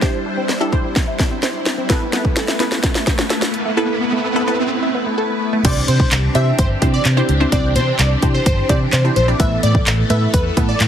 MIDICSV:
0, 0, Header, 1, 8, 480
1, 0, Start_track
1, 0, Key_signature, 0, "major"
1, 0, Tempo, 468750
1, 23, Time_signature, 4, 2, 24, 8
1, 11140, End_track
2, 0, Start_track
2, 0, Title_t, "Digital synth lead"
2, 0, Program_c, 0, 84
2, 5781, Note_on_c, 0, 74, 101
2, 5991, Note_off_c, 0, 74, 0
2, 6022, Note_on_c, 0, 72, 89
2, 6231, Note_off_c, 0, 72, 0
2, 6502, Note_on_c, 0, 76, 91
2, 6711, Note_off_c, 0, 76, 0
2, 6743, Note_on_c, 0, 72, 84
2, 6847, Note_off_c, 0, 72, 0
2, 7102, Note_on_c, 0, 74, 85
2, 7207, Note_off_c, 0, 74, 0
2, 7703, Note_on_c, 0, 74, 103
2, 7912, Note_off_c, 0, 74, 0
2, 7942, Note_on_c, 0, 72, 83
2, 8151, Note_off_c, 0, 72, 0
2, 8183, Note_on_c, 0, 74, 83
2, 8287, Note_off_c, 0, 74, 0
2, 8543, Note_on_c, 0, 72, 78
2, 8647, Note_off_c, 0, 72, 0
2, 8663, Note_on_c, 0, 72, 88
2, 8872, Note_off_c, 0, 72, 0
2, 8903, Note_on_c, 0, 74, 79
2, 9007, Note_off_c, 0, 74, 0
2, 9142, Note_on_c, 0, 72, 82
2, 9247, Note_off_c, 0, 72, 0
2, 9381, Note_on_c, 0, 72, 82
2, 9487, Note_off_c, 0, 72, 0
2, 9621, Note_on_c, 0, 76, 101
2, 9831, Note_off_c, 0, 76, 0
2, 9862, Note_on_c, 0, 74, 93
2, 10071, Note_off_c, 0, 74, 0
2, 10342, Note_on_c, 0, 76, 93
2, 10551, Note_off_c, 0, 76, 0
2, 10582, Note_on_c, 0, 71, 84
2, 10687, Note_off_c, 0, 71, 0
2, 10942, Note_on_c, 0, 74, 87
2, 11047, Note_off_c, 0, 74, 0
2, 11140, End_track
3, 0, Start_track
3, 0, Title_t, "Synth pluck"
3, 0, Program_c, 1, 84
3, 19, Note_on_c, 1, 62, 89
3, 21, Note_on_c, 1, 64, 82
3, 23, Note_on_c, 1, 67, 86
3, 25, Note_on_c, 1, 72, 103
3, 435, Note_off_c, 1, 62, 0
3, 436, Note_off_c, 1, 64, 0
3, 437, Note_off_c, 1, 67, 0
3, 438, Note_off_c, 1, 72, 0
3, 620, Note_on_c, 1, 62, 88
3, 621, Note_on_c, 1, 64, 81
3, 623, Note_on_c, 1, 67, 84
3, 625, Note_on_c, 1, 69, 104
3, 704, Note_off_c, 1, 62, 0
3, 705, Note_off_c, 1, 64, 0
3, 706, Note_off_c, 1, 67, 0
3, 707, Note_off_c, 1, 69, 0
3, 740, Note_on_c, 1, 62, 88
3, 741, Note_on_c, 1, 64, 80
3, 743, Note_on_c, 1, 67, 79
3, 745, Note_on_c, 1, 72, 100
3, 1404, Note_off_c, 1, 62, 0
3, 1405, Note_off_c, 1, 64, 0
3, 1406, Note_off_c, 1, 67, 0
3, 1406, Note_off_c, 1, 72, 0
3, 1940, Note_on_c, 1, 59, 93
3, 1942, Note_on_c, 1, 64, 83
3, 1944, Note_on_c, 1, 69, 83
3, 1945, Note_on_c, 1, 71, 101
3, 2107, Note_off_c, 1, 59, 0
3, 2108, Note_off_c, 1, 64, 0
3, 2109, Note_off_c, 1, 69, 0
3, 2110, Note_off_c, 1, 71, 0
3, 2180, Note_on_c, 1, 59, 92
3, 2182, Note_on_c, 1, 64, 82
3, 2184, Note_on_c, 1, 69, 82
3, 2185, Note_on_c, 1, 71, 100
3, 2512, Note_off_c, 1, 59, 0
3, 2513, Note_off_c, 1, 64, 0
3, 2514, Note_off_c, 1, 69, 0
3, 2515, Note_off_c, 1, 71, 0
3, 2660, Note_on_c, 1, 59, 94
3, 2662, Note_on_c, 1, 64, 82
3, 2664, Note_on_c, 1, 69, 81
3, 2665, Note_on_c, 1, 71, 99
3, 3324, Note_off_c, 1, 59, 0
3, 3325, Note_off_c, 1, 64, 0
3, 3326, Note_off_c, 1, 69, 0
3, 3326, Note_off_c, 1, 71, 0
3, 3860, Note_on_c, 1, 59, 93
3, 3862, Note_on_c, 1, 64, 87
3, 3863, Note_on_c, 1, 69, 87
3, 3865, Note_on_c, 1, 71, 104
3, 4275, Note_off_c, 1, 59, 0
3, 4276, Note_off_c, 1, 64, 0
3, 4277, Note_off_c, 1, 69, 0
3, 4278, Note_off_c, 1, 71, 0
3, 4459, Note_on_c, 1, 59, 95
3, 4461, Note_on_c, 1, 64, 85
3, 4463, Note_on_c, 1, 69, 83
3, 4465, Note_on_c, 1, 71, 100
3, 4544, Note_off_c, 1, 59, 0
3, 4545, Note_off_c, 1, 64, 0
3, 4546, Note_off_c, 1, 69, 0
3, 4546, Note_off_c, 1, 71, 0
3, 4580, Note_on_c, 1, 59, 92
3, 4582, Note_on_c, 1, 64, 82
3, 4583, Note_on_c, 1, 69, 82
3, 4585, Note_on_c, 1, 71, 104
3, 5244, Note_off_c, 1, 59, 0
3, 5245, Note_off_c, 1, 64, 0
3, 5245, Note_off_c, 1, 69, 0
3, 5246, Note_off_c, 1, 71, 0
3, 5780, Note_on_c, 1, 60, 77
3, 5781, Note_on_c, 1, 62, 69
3, 5783, Note_on_c, 1, 64, 71
3, 5784, Note_on_c, 1, 67, 76
3, 5785, Note_on_c, 1, 72, 90
3, 6278, Note_off_c, 1, 60, 0
3, 6279, Note_off_c, 1, 62, 0
3, 6280, Note_off_c, 1, 64, 0
3, 6280, Note_off_c, 1, 67, 0
3, 6281, Note_off_c, 1, 72, 0
3, 6500, Note_on_c, 1, 60, 77
3, 6501, Note_on_c, 1, 62, 72
3, 6503, Note_on_c, 1, 64, 69
3, 6504, Note_on_c, 1, 67, 69
3, 6506, Note_on_c, 1, 72, 87
3, 6833, Note_off_c, 1, 60, 0
3, 6833, Note_off_c, 1, 62, 0
3, 6834, Note_off_c, 1, 64, 0
3, 6834, Note_off_c, 1, 67, 0
3, 6836, Note_off_c, 1, 72, 0
3, 6981, Note_on_c, 1, 60, 80
3, 6982, Note_on_c, 1, 62, 74
3, 6983, Note_on_c, 1, 64, 74
3, 6984, Note_on_c, 1, 67, 74
3, 6985, Note_on_c, 1, 72, 88
3, 7230, Note_off_c, 1, 60, 0
3, 7231, Note_off_c, 1, 62, 0
3, 7231, Note_off_c, 1, 64, 0
3, 7232, Note_off_c, 1, 67, 0
3, 7233, Note_off_c, 1, 72, 0
3, 7340, Note_on_c, 1, 60, 95
3, 7341, Note_on_c, 1, 62, 87
3, 7343, Note_on_c, 1, 64, 88
3, 7344, Note_on_c, 1, 67, 89
3, 7345, Note_on_c, 1, 72, 105
3, 7507, Note_off_c, 1, 60, 0
3, 7508, Note_off_c, 1, 62, 0
3, 7508, Note_off_c, 1, 64, 0
3, 7509, Note_off_c, 1, 67, 0
3, 7510, Note_off_c, 1, 72, 0
3, 7580, Note_on_c, 1, 60, 85
3, 7582, Note_on_c, 1, 62, 75
3, 7583, Note_on_c, 1, 64, 77
3, 7584, Note_on_c, 1, 67, 75
3, 7585, Note_on_c, 1, 72, 89
3, 7664, Note_off_c, 1, 60, 0
3, 7665, Note_off_c, 1, 62, 0
3, 7666, Note_off_c, 1, 64, 0
3, 7666, Note_off_c, 1, 67, 0
3, 7667, Note_off_c, 1, 72, 0
3, 7700, Note_on_c, 1, 60, 78
3, 7702, Note_on_c, 1, 62, 75
3, 7703, Note_on_c, 1, 64, 73
3, 7704, Note_on_c, 1, 67, 71
3, 7706, Note_on_c, 1, 72, 87
3, 8198, Note_off_c, 1, 60, 0
3, 8199, Note_off_c, 1, 62, 0
3, 8200, Note_off_c, 1, 64, 0
3, 8200, Note_off_c, 1, 67, 0
3, 8201, Note_off_c, 1, 72, 0
3, 8420, Note_on_c, 1, 60, 79
3, 8422, Note_on_c, 1, 62, 70
3, 8423, Note_on_c, 1, 64, 75
3, 8424, Note_on_c, 1, 67, 72
3, 8425, Note_on_c, 1, 72, 83
3, 8753, Note_off_c, 1, 60, 0
3, 8753, Note_off_c, 1, 62, 0
3, 8754, Note_off_c, 1, 64, 0
3, 8755, Note_off_c, 1, 67, 0
3, 8755, Note_off_c, 1, 72, 0
3, 8901, Note_on_c, 1, 60, 82
3, 8902, Note_on_c, 1, 62, 72
3, 8903, Note_on_c, 1, 64, 72
3, 8905, Note_on_c, 1, 67, 72
3, 8906, Note_on_c, 1, 72, 88
3, 9150, Note_off_c, 1, 60, 0
3, 9151, Note_off_c, 1, 62, 0
3, 9152, Note_off_c, 1, 64, 0
3, 9152, Note_off_c, 1, 67, 0
3, 9153, Note_off_c, 1, 72, 0
3, 9261, Note_on_c, 1, 60, 80
3, 9262, Note_on_c, 1, 62, 73
3, 9263, Note_on_c, 1, 64, 73
3, 9264, Note_on_c, 1, 67, 71
3, 9266, Note_on_c, 1, 72, 90
3, 9427, Note_off_c, 1, 60, 0
3, 9428, Note_off_c, 1, 62, 0
3, 9428, Note_off_c, 1, 64, 0
3, 9429, Note_off_c, 1, 67, 0
3, 9430, Note_off_c, 1, 72, 0
3, 9501, Note_on_c, 1, 60, 81
3, 9503, Note_on_c, 1, 62, 75
3, 9504, Note_on_c, 1, 64, 73
3, 9505, Note_on_c, 1, 67, 75
3, 9507, Note_on_c, 1, 74, 89
3, 9585, Note_off_c, 1, 60, 0
3, 9585, Note_off_c, 1, 62, 0
3, 9586, Note_off_c, 1, 64, 0
3, 9587, Note_off_c, 1, 67, 0
3, 9587, Note_off_c, 1, 74, 0
3, 9621, Note_on_c, 1, 57, 78
3, 9622, Note_on_c, 1, 59, 74
3, 9624, Note_on_c, 1, 64, 74
3, 9625, Note_on_c, 1, 69, 73
3, 9626, Note_on_c, 1, 71, 87
3, 10119, Note_off_c, 1, 57, 0
3, 10119, Note_off_c, 1, 59, 0
3, 10120, Note_off_c, 1, 64, 0
3, 10121, Note_off_c, 1, 69, 0
3, 10121, Note_off_c, 1, 71, 0
3, 10340, Note_on_c, 1, 57, 77
3, 10341, Note_on_c, 1, 59, 72
3, 10343, Note_on_c, 1, 64, 74
3, 10344, Note_on_c, 1, 69, 70
3, 10345, Note_on_c, 1, 71, 87
3, 10673, Note_off_c, 1, 57, 0
3, 10673, Note_off_c, 1, 59, 0
3, 10674, Note_off_c, 1, 64, 0
3, 10675, Note_off_c, 1, 69, 0
3, 10675, Note_off_c, 1, 71, 0
3, 10821, Note_on_c, 1, 57, 80
3, 10822, Note_on_c, 1, 59, 74
3, 10824, Note_on_c, 1, 64, 73
3, 10825, Note_on_c, 1, 69, 77
3, 10826, Note_on_c, 1, 71, 87
3, 11070, Note_off_c, 1, 57, 0
3, 11071, Note_off_c, 1, 59, 0
3, 11072, Note_off_c, 1, 64, 0
3, 11072, Note_off_c, 1, 69, 0
3, 11073, Note_off_c, 1, 71, 0
3, 11140, End_track
4, 0, Start_track
4, 0, Title_t, "Synth arpeggio sound"
4, 0, Program_c, 2, 84
4, 23, Note_on_c, 2, 72, 94
4, 118, Note_off_c, 2, 72, 0
4, 262, Note_on_c, 2, 62, 76
4, 358, Note_off_c, 2, 62, 0
4, 382, Note_on_c, 2, 60, 92
4, 478, Note_off_c, 2, 60, 0
4, 502, Note_on_c, 2, 72, 78
4, 598, Note_off_c, 2, 72, 0
4, 622, Note_on_c, 2, 64, 77
4, 718, Note_off_c, 2, 64, 0
4, 862, Note_on_c, 2, 60, 71
4, 958, Note_off_c, 2, 60, 0
4, 1102, Note_on_c, 2, 64, 92
4, 1198, Note_off_c, 2, 64, 0
4, 1222, Note_on_c, 2, 62, 77
4, 1318, Note_off_c, 2, 62, 0
4, 1342, Note_on_c, 2, 60, 75
4, 1438, Note_off_c, 2, 60, 0
4, 1462, Note_on_c, 2, 72, 94
4, 1558, Note_off_c, 2, 72, 0
4, 1822, Note_on_c, 2, 60, 90
4, 1918, Note_off_c, 2, 60, 0
4, 1942, Note_on_c, 2, 69, 96
4, 2038, Note_off_c, 2, 69, 0
4, 2182, Note_on_c, 2, 59, 75
4, 2278, Note_off_c, 2, 59, 0
4, 2302, Note_on_c, 2, 57, 93
4, 2398, Note_off_c, 2, 57, 0
4, 2422, Note_on_c, 2, 69, 80
4, 2518, Note_off_c, 2, 69, 0
4, 2542, Note_on_c, 2, 64, 75
4, 2638, Note_off_c, 2, 64, 0
4, 2782, Note_on_c, 2, 57, 70
4, 2878, Note_off_c, 2, 57, 0
4, 3022, Note_on_c, 2, 64, 94
4, 3118, Note_off_c, 2, 64, 0
4, 3143, Note_on_c, 2, 59, 75
4, 3239, Note_off_c, 2, 59, 0
4, 3262, Note_on_c, 2, 57, 75
4, 3358, Note_off_c, 2, 57, 0
4, 3382, Note_on_c, 2, 69, 99
4, 3478, Note_off_c, 2, 69, 0
4, 3742, Note_on_c, 2, 57, 83
4, 3838, Note_off_c, 2, 57, 0
4, 3863, Note_on_c, 2, 69, 95
4, 3958, Note_off_c, 2, 69, 0
4, 4103, Note_on_c, 2, 59, 79
4, 4199, Note_off_c, 2, 59, 0
4, 4223, Note_on_c, 2, 57, 91
4, 4319, Note_off_c, 2, 57, 0
4, 4343, Note_on_c, 2, 69, 80
4, 4438, Note_off_c, 2, 69, 0
4, 4462, Note_on_c, 2, 64, 78
4, 4558, Note_off_c, 2, 64, 0
4, 4702, Note_on_c, 2, 57, 72
4, 4798, Note_off_c, 2, 57, 0
4, 4942, Note_on_c, 2, 64, 90
4, 5038, Note_off_c, 2, 64, 0
4, 5063, Note_on_c, 2, 59, 81
4, 5158, Note_off_c, 2, 59, 0
4, 5183, Note_on_c, 2, 57, 73
4, 5278, Note_off_c, 2, 57, 0
4, 5302, Note_on_c, 2, 69, 96
4, 5398, Note_off_c, 2, 69, 0
4, 5662, Note_on_c, 2, 57, 93
4, 5758, Note_off_c, 2, 57, 0
4, 11140, End_track
5, 0, Start_track
5, 0, Title_t, "String machine"
5, 0, Program_c, 3, 50
5, 0, Note_on_c, 3, 55, 75
5, 0, Note_on_c, 3, 62, 75
5, 0, Note_on_c, 3, 64, 73
5, 0, Note_on_c, 3, 72, 86
5, 1905, Note_off_c, 3, 55, 0
5, 1905, Note_off_c, 3, 62, 0
5, 1905, Note_off_c, 3, 72, 0
5, 1942, Note_on_c, 3, 71, 91
5, 1943, Note_on_c, 3, 57, 77
5, 1943, Note_on_c, 3, 59, 75
5, 5743, Note_off_c, 3, 64, 0
5, 5744, Note_off_c, 3, 59, 0
5, 5744, Note_off_c, 3, 71, 0
5, 5745, Note_off_c, 3, 57, 0
5, 5781, Note_on_c, 3, 62, 75
5, 5781, Note_on_c, 3, 67, 98
5, 5782, Note_on_c, 3, 52, 82
5, 5782, Note_on_c, 3, 60, 79
5, 9584, Note_off_c, 3, 60, 0
5, 9584, Note_off_c, 3, 62, 0
5, 9584, Note_off_c, 3, 67, 0
5, 9623, Note_on_c, 3, 69, 95
5, 9624, Note_on_c, 3, 57, 78
5, 9624, Note_on_c, 3, 59, 81
5, 11140, Note_off_c, 3, 52, 0
5, 11140, Note_off_c, 3, 57, 0
5, 11140, Note_off_c, 3, 59, 0
5, 11140, Note_off_c, 3, 69, 0
5, 11140, End_track
6, 0, Start_track
6, 0, Title_t, "Fingered electric bass"
6, 0, Program_c, 4, 33
6, 5783, Note_on_c, 4, 36, 118
6, 5939, Note_off_c, 4, 36, 0
6, 6022, Note_on_c, 4, 48, 105
6, 6178, Note_off_c, 4, 48, 0
6, 6262, Note_on_c, 4, 36, 101
6, 6419, Note_off_c, 4, 36, 0
6, 6503, Note_on_c, 4, 48, 107
6, 6659, Note_off_c, 4, 48, 0
6, 6745, Note_on_c, 4, 31, 104
6, 6900, Note_off_c, 4, 31, 0
6, 6983, Note_on_c, 4, 48, 108
6, 7139, Note_off_c, 4, 48, 0
6, 7223, Note_on_c, 4, 48, 105
6, 7379, Note_off_c, 4, 48, 0
6, 7463, Note_on_c, 4, 37, 89
6, 7619, Note_off_c, 4, 37, 0
6, 7702, Note_on_c, 4, 36, 113
6, 7942, Note_on_c, 4, 48, 101
6, 7958, Note_off_c, 4, 36, 0
6, 8098, Note_off_c, 4, 48, 0
6, 8183, Note_on_c, 4, 36, 103
6, 8339, Note_off_c, 4, 36, 0
6, 8423, Note_on_c, 4, 48, 100
6, 8579, Note_off_c, 4, 48, 0
6, 8665, Note_on_c, 4, 31, 96
6, 8820, Note_off_c, 4, 31, 0
6, 8903, Note_on_c, 4, 48, 102
6, 9059, Note_off_c, 4, 48, 0
6, 9144, Note_on_c, 4, 48, 106
6, 9299, Note_off_c, 4, 48, 0
6, 9383, Note_on_c, 4, 34, 95
6, 9539, Note_off_c, 4, 34, 0
6, 9623, Note_on_c, 4, 33, 108
6, 9779, Note_off_c, 4, 33, 0
6, 9863, Note_on_c, 4, 45, 102
6, 10019, Note_off_c, 4, 45, 0
6, 10103, Note_on_c, 4, 33, 106
6, 10259, Note_off_c, 4, 33, 0
6, 10343, Note_on_c, 4, 45, 100
6, 10499, Note_off_c, 4, 45, 0
6, 10585, Note_on_c, 4, 40, 95
6, 10740, Note_off_c, 4, 40, 0
6, 10824, Note_on_c, 4, 45, 110
6, 10980, Note_off_c, 4, 45, 0
6, 11064, Note_on_c, 4, 45, 104
6, 11140, Note_off_c, 4, 45, 0
6, 11140, End_track
7, 0, Start_track
7, 0, Title_t, "Riser"
7, 0, Program_c, 5, 103
7, 0, Note_on_c, 5, 60, 77
7, 4823, Note_off_c, 5, 60, 0
7, 11140, End_track
8, 0, Start_track
8, 0, Title_t, "Drums"
8, 23, Note_on_c, 9, 36, 107
8, 23, Note_on_c, 9, 38, 71
8, 125, Note_off_c, 9, 36, 0
8, 125, Note_off_c, 9, 38, 0
8, 503, Note_on_c, 9, 38, 74
8, 605, Note_off_c, 9, 38, 0
8, 743, Note_on_c, 9, 36, 90
8, 846, Note_off_c, 9, 36, 0
8, 982, Note_on_c, 9, 38, 84
8, 985, Note_on_c, 9, 36, 102
8, 1084, Note_off_c, 9, 38, 0
8, 1087, Note_off_c, 9, 36, 0
8, 1222, Note_on_c, 9, 38, 79
8, 1223, Note_on_c, 9, 36, 93
8, 1325, Note_off_c, 9, 38, 0
8, 1326, Note_off_c, 9, 36, 0
8, 1462, Note_on_c, 9, 38, 83
8, 1565, Note_off_c, 9, 38, 0
8, 1703, Note_on_c, 9, 38, 88
8, 1805, Note_off_c, 9, 38, 0
8, 1942, Note_on_c, 9, 38, 93
8, 1942, Note_on_c, 9, 42, 90
8, 1943, Note_on_c, 9, 36, 103
8, 2045, Note_off_c, 9, 36, 0
8, 2045, Note_off_c, 9, 38, 0
8, 2045, Note_off_c, 9, 42, 0
8, 2183, Note_on_c, 9, 38, 97
8, 2183, Note_on_c, 9, 42, 78
8, 2285, Note_off_c, 9, 38, 0
8, 2285, Note_off_c, 9, 42, 0
8, 2301, Note_on_c, 9, 36, 96
8, 2404, Note_off_c, 9, 36, 0
8, 2422, Note_on_c, 9, 38, 103
8, 2422, Note_on_c, 9, 42, 93
8, 2524, Note_off_c, 9, 38, 0
8, 2525, Note_off_c, 9, 42, 0
8, 2542, Note_on_c, 9, 38, 97
8, 2644, Note_off_c, 9, 38, 0
8, 2662, Note_on_c, 9, 42, 64
8, 2663, Note_on_c, 9, 38, 95
8, 2764, Note_off_c, 9, 42, 0
8, 2765, Note_off_c, 9, 38, 0
8, 2782, Note_on_c, 9, 38, 103
8, 2885, Note_off_c, 9, 38, 0
8, 2902, Note_on_c, 9, 38, 109
8, 2904, Note_on_c, 9, 42, 92
8, 2905, Note_on_c, 9, 36, 103
8, 3005, Note_off_c, 9, 38, 0
8, 3006, Note_off_c, 9, 42, 0
8, 3008, Note_off_c, 9, 36, 0
8, 3023, Note_on_c, 9, 38, 104
8, 3125, Note_off_c, 9, 38, 0
8, 3143, Note_on_c, 9, 36, 97
8, 3143, Note_on_c, 9, 38, 104
8, 3143, Note_on_c, 9, 42, 69
8, 3245, Note_off_c, 9, 38, 0
8, 3246, Note_off_c, 9, 36, 0
8, 3246, Note_off_c, 9, 42, 0
8, 3262, Note_on_c, 9, 38, 107
8, 3365, Note_off_c, 9, 38, 0
8, 3382, Note_on_c, 9, 38, 102
8, 3382, Note_on_c, 9, 42, 94
8, 3484, Note_off_c, 9, 38, 0
8, 3484, Note_off_c, 9, 42, 0
8, 3503, Note_on_c, 9, 38, 104
8, 3605, Note_off_c, 9, 38, 0
8, 3623, Note_on_c, 9, 42, 69
8, 3726, Note_off_c, 9, 42, 0
8, 5782, Note_on_c, 9, 42, 94
8, 5782, Note_on_c, 9, 49, 111
8, 5783, Note_on_c, 9, 36, 117
8, 5885, Note_off_c, 9, 36, 0
8, 5885, Note_off_c, 9, 42, 0
8, 5885, Note_off_c, 9, 49, 0
8, 6023, Note_on_c, 9, 42, 82
8, 6125, Note_off_c, 9, 42, 0
8, 6141, Note_on_c, 9, 36, 104
8, 6243, Note_off_c, 9, 36, 0
8, 6261, Note_on_c, 9, 39, 118
8, 6262, Note_on_c, 9, 42, 97
8, 6364, Note_off_c, 9, 39, 0
8, 6364, Note_off_c, 9, 42, 0
8, 6502, Note_on_c, 9, 42, 70
8, 6604, Note_off_c, 9, 42, 0
8, 6743, Note_on_c, 9, 42, 106
8, 6745, Note_on_c, 9, 36, 110
8, 6846, Note_off_c, 9, 42, 0
8, 6847, Note_off_c, 9, 36, 0
8, 6983, Note_on_c, 9, 36, 103
8, 6983, Note_on_c, 9, 42, 75
8, 7085, Note_off_c, 9, 42, 0
8, 7086, Note_off_c, 9, 36, 0
8, 7221, Note_on_c, 9, 42, 101
8, 7222, Note_on_c, 9, 39, 102
8, 7324, Note_off_c, 9, 39, 0
8, 7324, Note_off_c, 9, 42, 0
8, 7463, Note_on_c, 9, 42, 70
8, 7565, Note_off_c, 9, 42, 0
8, 7703, Note_on_c, 9, 36, 114
8, 7703, Note_on_c, 9, 42, 90
8, 7805, Note_off_c, 9, 36, 0
8, 7805, Note_off_c, 9, 42, 0
8, 7943, Note_on_c, 9, 42, 83
8, 8045, Note_off_c, 9, 42, 0
8, 8182, Note_on_c, 9, 39, 118
8, 8183, Note_on_c, 9, 42, 98
8, 8285, Note_off_c, 9, 39, 0
8, 8285, Note_off_c, 9, 42, 0
8, 8422, Note_on_c, 9, 42, 71
8, 8423, Note_on_c, 9, 36, 93
8, 8524, Note_off_c, 9, 42, 0
8, 8526, Note_off_c, 9, 36, 0
8, 8664, Note_on_c, 9, 42, 102
8, 8665, Note_on_c, 9, 36, 110
8, 8766, Note_off_c, 9, 42, 0
8, 8767, Note_off_c, 9, 36, 0
8, 8903, Note_on_c, 9, 36, 98
8, 8903, Note_on_c, 9, 42, 79
8, 9005, Note_off_c, 9, 42, 0
8, 9006, Note_off_c, 9, 36, 0
8, 9142, Note_on_c, 9, 39, 105
8, 9142, Note_on_c, 9, 42, 96
8, 9244, Note_off_c, 9, 39, 0
8, 9244, Note_off_c, 9, 42, 0
8, 9382, Note_on_c, 9, 42, 69
8, 9485, Note_off_c, 9, 42, 0
8, 9622, Note_on_c, 9, 42, 93
8, 9623, Note_on_c, 9, 36, 117
8, 9725, Note_off_c, 9, 36, 0
8, 9725, Note_off_c, 9, 42, 0
8, 9863, Note_on_c, 9, 42, 82
8, 9965, Note_off_c, 9, 42, 0
8, 9981, Note_on_c, 9, 36, 99
8, 10084, Note_off_c, 9, 36, 0
8, 10103, Note_on_c, 9, 39, 117
8, 10104, Note_on_c, 9, 42, 101
8, 10206, Note_off_c, 9, 39, 0
8, 10206, Note_off_c, 9, 42, 0
8, 10342, Note_on_c, 9, 42, 69
8, 10445, Note_off_c, 9, 42, 0
8, 10585, Note_on_c, 9, 42, 106
8, 10586, Note_on_c, 9, 36, 110
8, 10687, Note_off_c, 9, 42, 0
8, 10688, Note_off_c, 9, 36, 0
8, 10824, Note_on_c, 9, 36, 102
8, 10824, Note_on_c, 9, 42, 75
8, 10926, Note_off_c, 9, 36, 0
8, 10926, Note_off_c, 9, 42, 0
8, 11063, Note_on_c, 9, 39, 109
8, 11063, Note_on_c, 9, 42, 99
8, 11140, Note_off_c, 9, 39, 0
8, 11140, Note_off_c, 9, 42, 0
8, 11140, End_track
0, 0, End_of_file